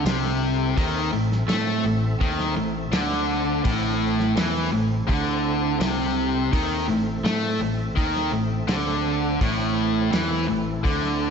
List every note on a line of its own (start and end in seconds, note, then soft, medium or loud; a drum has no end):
0.00 0.76 C4 medium
0.00 0.75 E4 medium
0.00 0.75 A4 medium
0.05 0.73 C2 loud
0.05 0.77 C3 loud
0.05 snare loud
0.05 open hi-hat medium
0.05 tambourine loud
0.78 1.11 D#2 medium
0.78 1.12 D#3 medium
0.78 3.62 C4 medium
0.78 3.61 A4 medium
0.78 3.63 E5 medium
0.78 kick loud
0.78 open hi-hat medium
1.12 1.46 A1 medium
1.12 1.42 A2 medium
1.32 snare soft
1.48 1.82 A2 medium
1.48 1.84 A3 medium
1.48 snare loud
1.48 open hi-hat medium
1.48 tambourine medium
1.85 2.18 A1 medium
1.85 2.14 A2 medium
2.21 2.55 D#2 medium
2.21 2.56 D#3 loud
2.21 kick loud
2.21 open hi-hat medium
2.40 snare soft
2.56 2.90 A1 medium
2.56 2.85 A2 medium
2.92 3.60 D2 medium
2.92 3.63 D3 loud
2.92 snare loud
2.92 open hi-hat medium
2.92 tambourine loud
3.62 4.33 A1 loud
3.62 4.35 A2 loud
3.62 6.49 C4 medium
3.62 6.49 E4 medium
3.62 6.48 A4 medium
3.62 kick loud
3.62 open hi-hat medium
4.20 snare soft
4.37 4.70 E2 medium
4.37 4.72 E3 medium
4.37 snare loud
4.37 open hi-hat medium
4.37 tambourine loud
4.72 5.06 A1 medium
4.72 5.01 A2 medium
5.07 5.77 D2 medium
5.07 5.79 D3 loud
5.07 kick loud
5.07 open hi-hat medium
5.80 6.48 C2 loud
5.80 6.51 C3 loud
5.80 snare loud
5.80 open hi-hat medium
5.80 tambourine loud
6.52 6.86 D#2 medium
6.52 6.87 D#3 medium
6.52 9.38 C4 medium
6.52 9.38 A4 medium
6.52 9.38 E5 medium
6.52 kick loud
6.52 open hi-hat medium
6.88 7.22 A1 medium
6.88 7.17 A2 medium
7.24 7.58 A2 medium
7.24 7.59 A3 loud
7.24 snare loud
7.24 open hi-hat medium
7.24 tambourine loud
7.60 7.94 A1 medium
7.60 7.89 A2 medium
7.96 8.30 D#2 medium
7.96 8.31 D#3 medium
7.96 kick loud
7.96 open hi-hat medium
8.16 snare soft
8.32 8.66 A1 medium
8.32 8.62 A2 medium
8.67 9.36 D2 medium
8.67 9.39 D3 loud
8.67 snare medium
8.67 open hi-hat medium
8.67 tambourine loud
9.41 10.09 A1 medium
9.41 10.12 A2 loud
9.41 11.30 C4 medium
9.41 11.30 E4 medium
9.41 11.30 A4 medium
9.41 kick loud
9.41 open hi-hat medium
10.12 10.47 E2 medium
10.12 10.47 E3 medium
10.12 snare loud
10.12 open hi-hat medium
10.12 tambourine medium
10.48 10.83 A1 medium
10.48 10.77 A2 medium
10.83 11.30 D2 loud
10.83 11.30 D3 loud
10.83 kick loud
10.83 open hi-hat medium
11.04 snare soft